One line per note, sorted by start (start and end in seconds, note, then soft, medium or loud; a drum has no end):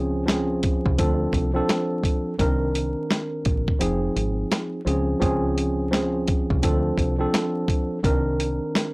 0.00 0.81 C#2 loud
0.00 0.22 F3 loud
0.00 0.23 C4 medium
0.00 0.23 C#4 medium
0.00 0.24 G#4 loud
0.26 0.96 F3 loud
0.26 0.97 C4 medium
0.26 0.98 C#4 medium
0.26 0.99 G#4 medium
0.26 snare loud
0.26 snare medium
0.26 closed hi-hat loud
0.63 kick loud
0.63 closed hi-hat medium
0.86 0.96 C2 medium
0.86 kick medium
0.98 1.26 D2 loud
0.98 1.50 F3 medium
0.98 1.50 C4 medium
0.98 1.51 D4 medium
0.98 1.51 A4 loud
0.98 kick medium
0.98 closed hi-hat loud
1.33 1.60 C2 medium
1.33 kick medium
1.33 closed hi-hat medium
1.54 2.33 F3 medium
1.54 2.33 C4 medium
1.54 2.34 D4 medium
1.54 2.34 A4 loud
1.69 snare loud
1.69 snare medium
1.69 closed hi-hat medium
2.03 kick medium
2.03 closed hi-hat medium
2.38 2.94 C2 loud
2.38 3.80 D#3 medium
2.38 3.79 C4 medium
2.38 3.81 D4 medium
2.38 3.81 A#4 loud
2.38 kick loud
2.38 closed hi-hat medium
2.75 closed hi-hat medium
3.11 snare loud
3.11 snare medium
3.11 closed hi-hat medium
3.45 3.73 A#1 medium
3.45 kick loud
3.45 closed hi-hat medium
3.68 kick medium
3.79 4.08 F1 loud
3.79 4.79 F3 medium
3.79 4.80 C4 medium
3.79 4.80 D#4 medium
3.79 4.81 G#4 loud
3.79 closed hi-hat loud
4.16 4.43 G#1 medium
4.16 closed hi-hat medium
4.52 snare loud
4.52 snare medium
4.52 closed hi-hat medium
4.85 5.14 C#2 medium
4.85 5.19 F3 medium
4.85 5.19 C4 medium
4.85 5.20 C#4 medium
4.85 5.20 G#4 loud
4.85 closed hi-hat medium
5.20 6.45 C#2 loud
5.20 5.87 F3 medium
5.20 5.87 C4 medium
5.20 5.88 C#4 medium
5.20 5.88 G#4 loud
5.20 kick loud
5.20 closed hi-hat medium
5.58 closed hi-hat medium
5.91 6.61 F3 loud
5.91 6.62 C4 medium
5.91 6.63 C#4 medium
5.91 6.63 G#4 medium
5.91 snare loud
5.91 snare medium
5.91 closed hi-hat loud
6.28 kick loud
6.28 closed hi-hat medium
6.50 6.60 C2 medium
6.50 kick medium
6.62 6.91 D2 loud
6.62 7.14 F3 medium
6.62 7.15 C4 medium
6.62 7.15 D4 medium
6.62 7.16 A4 loud
6.62 kick loud
6.62 closed hi-hat loud
6.98 7.25 C2 medium
6.98 kick medium
6.98 closed hi-hat medium
7.18 7.98 F3 medium
7.18 7.98 C4 medium
7.18 7.99 D4 medium
7.18 7.99 A4 loud
7.34 snare loud
7.34 snare medium
7.34 closed hi-hat medium
7.68 kick loud
7.68 closed hi-hat medium
8.03 8.59 C2 loud
8.03 8.94 D#3 loud
8.03 8.94 C4 medium
8.03 8.94 D4 medium
8.03 8.94 A#4 loud
8.03 kick loud
8.03 closed hi-hat medium
8.40 closed hi-hat medium
8.75 snare loud
8.75 snare medium
8.75 closed hi-hat loud